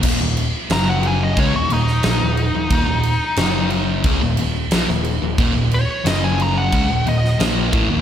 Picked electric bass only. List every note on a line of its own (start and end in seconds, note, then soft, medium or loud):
0.03 0.19 D#1 loud
0.21 0.52 D#1 medium
0.70 1.33 F#1 medium
1.37 1.52 C#2 loud
1.54 1.69 D#1 medium
1.70 2.01 D#1 medium
2.04 2.20 A#1 medium
2.21 2.52 D#1 medium
2.53 2.69 D#1 medium
2.71 2.86 D#1 loud
2.87 3.18 D#1 medium
3.37 4.01 F#1 medium
4.04 4.20 C#2 loud
4.22 4.37 D#1 medium
4.39 4.70 D#1 medium
4.71 4.87 A#1 loud
4.88 5.19 D#1 medium
5.22 5.37 D#1 medium
5.39 5.54 D#1 loud
5.55 5.86 D#1 medium
6.05 6.69 F#1 medium
6.72 6.88 C#2 loud
6.90 7.05 D#1 medium
7.07 7.38 D#1 medium
7.39 7.71 A#1 medium
7.73 7.88 A1 loud
7.89 8.01 D#1 medium